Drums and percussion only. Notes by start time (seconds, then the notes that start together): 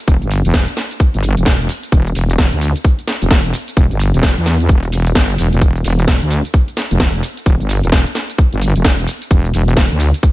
0.08 kick, shaker
0.22 closed hi-hat, shaker
0.31 open hi-hat, shaker
0.45 closed hi-hat, shaker
0.54 kick, snare, shaker
0.68 closed hi-hat, shaker
0.77 snare, open hi-hat, shaker
0.91 closed hi-hat, shaker
1.00 kick, shaker
1.14 closed hi-hat, shaker
1.23 open hi-hat, shaker
1.37 closed hi-hat, shaker
1.46 kick, snare, shaker
1.60 closed hi-hat, shaker
1.69 open hi-hat, shaker
1.83 closed hi-hat, shaker
1.92 kick, shaker
2.07 closed hi-hat, shaker
2.15 open hi-hat, shaker
2.30 closed hi-hat, shaker
2.38 kick, snare, shaker
2.53 closed hi-hat, shaker
2.61 open hi-hat, shaker
2.76 closed hi-hat, shaker
2.85 kick, shaker
2.99 closed hi-hat, shaker
3.08 snare, open hi-hat, shaker
3.22 closed hi-hat, shaker
3.31 kick, snare, shaker
3.45 closed hi-hat, shaker
3.54 open hi-hat, shaker
3.68 closed hi-hat, shaker
3.77 kick, shaker
3.91 closed hi-hat, shaker
4.00 open hi-hat, shaker
4.14 closed hi-hat, shaker
4.23 kick, snare, shaker
4.37 closed hi-hat, shaker
4.46 snare, open hi-hat, shaker
4.60 closed hi-hat, shaker
4.69 kick, shaker
4.83 closed hi-hat, shaker
4.92 open hi-hat, shaker
5.07 closed hi-hat, shaker
5.15 kick, snare, shaker
5.30 closed hi-hat, shaker
5.38 open hi-hat, shaker
5.53 closed hi-hat, shaker
5.61 kick, shaker
5.76 closed hi-hat, shaker
5.84 open hi-hat, shaker
5.99 closed hi-hat, shaker
6.08 kick, snare, shaker
6.22 closed hi-hat, shaker
6.31 open hi-hat, shaker
6.45 closed hi-hat, shaker
6.54 kick, shaker
6.68 closed hi-hat, shaker
6.77 snare, open hi-hat, shaker
6.91 closed hi-hat, shaker
7.00 kick, snare, shaker
7.14 closed hi-hat, shaker
7.23 open hi-hat, shaker
7.37 closed hi-hat, shaker
7.46 kick, shaker
7.60 closed hi-hat, shaker
7.69 open hi-hat, shaker
7.83 closed hi-hat, shaker
7.92 kick, snare, shaker
8.07 closed hi-hat, shaker
8.15 snare, open hi-hat, shaker
8.30 closed hi-hat, shaker
8.38 kick, shaker
8.53 closed hi-hat, shaker
8.61 open hi-hat, shaker
8.76 closed hi-hat, shaker
8.84 kick, snare, shaker
8.99 closed hi-hat, shaker
9.08 open hi-hat, shaker
9.22 closed hi-hat, shaker
9.31 kick, shaker
9.45 closed hi-hat, shaker
9.54 open hi-hat, shaker
9.68 closed hi-hat, shaker
9.77 kick, snare, shaker
9.91 closed hi-hat, shaker
10.00 open hi-hat, shaker
10.14 closed hi-hat, shaker
10.23 kick, shaker